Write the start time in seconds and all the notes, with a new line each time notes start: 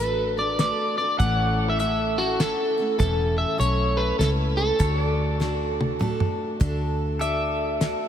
Already playing: A1 A4 B4 D5
0.00 A3 D4 F#4 A4, closed hi-hat
0.38 D4 F#4 A4 D5
0.59 A3 D4 F#4 A4 D5, snare, closed hi-hat
0.98 D4 F#4 A4 D5
1.18 A1 A2 E3 A3 C#4 E4 A4 D5 F#5, kick, closed hi-hat
1.39 C#5
1.70 E5
1.79 A3 C#4 E4 A4 E5, closed hi-hat
2.18 A3 C#4 E4 F#4 A4
2.40 A3 C#4 E4 A4, snare, closed hi-hat
2.78 A3 C#4 E4 A4
2.99 E1 A2 E3 A3 C#4 E4 A4, kick, closed hi-hat
3.38 E5
3.58 B1 A3 C#4 E4 A4 C#5, closed hi-hat
3.97 B4
4.19 C#2 A3 C#4 E4 A4, snare, closed hi-hat
4.57 A3 C#4 E4 A4
4.79 D2 D3 A3 D4 F#4 A4 C#5, kick, closed hi-hat
5.02 D5
5.40 A3 D4 F#4 A4, snare
5.81 high tom
5.99 A3 D4 F#4 A4, mid tom
6.20 mid tom
6.60 D2 D3 A3 D4 F#4 A4, kick, closed hi-hat
7.19 A3 D4 F#4 A4 D5 E5, closed hi-hat
7.81 A3 D4 F#4 A4, snare, closed hi-hat